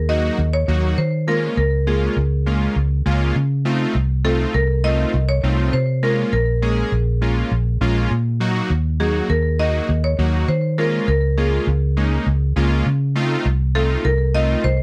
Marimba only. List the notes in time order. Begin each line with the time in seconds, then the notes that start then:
0.09 D#5
0.53 C#5
0.98 C5
1.28 A#4
1.58 A#4
1.87 G#4
4.25 A4
4.54 A#4
4.84 D#5
5.29 C#5
5.73 C5
6.03 A#4
6.33 A#4
6.63 G#4
9.00 G#4
9.30 A#4
9.59 D#5
10.04 C#5
10.49 C5
10.78 A#4
11.08 A#4
11.38 G#4
13.75 A4
14.05 A#4
14.35 D#5
14.64 C5